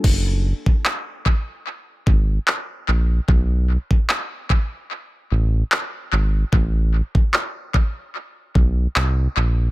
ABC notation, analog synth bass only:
X:1
M:4/4
L:1/16
Q:"Swing 16ths" 1/4=74
K:G#phr
V:1 name="Analog synth bass" clef=bass
F,,,3 z6 z G,,,2 z2 ^A,,,2 | B,,,3 z6 z A,,,2 z2 G,,,2 | A,,,3 z6 z B,,,2 ^B,,,2 ^A,,,2 |]